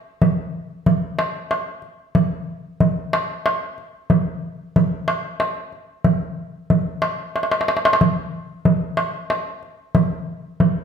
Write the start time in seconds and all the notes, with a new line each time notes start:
0.22 darbuka dum
0.86 darbuka dum
1.19 darbuka tek
1.51 darbuka tek
1.82 darbuka ka
2.15 darbuka dum
2.80 darbuka dum
3.13 darbuka tek
3.46 darbuka tek
3.78 darbuka ka
4.10 darbuka dum
4.76 darbuka dum
5.08 darbuka tek
5.40 darbuka tek
5.72 darbuka ka
6.04 darbuka dum
6.70 darbuka dum
7.02 darbuka tek
7.36 darbuka tek
7.43 darbuka ka
7.51 darbuka tek
7.61 darbuka ka
7.68 darbuka tek
7.77 darbuka ka
7.85 darbuka tek
7.93 darbuka ka
8.01 darbuka dum
8.65 darbuka dum
8.97 darbuka tek
9.30 darbuka tek
9.63 darbuka ka
9.95 darbuka dum
10.60 darbuka dum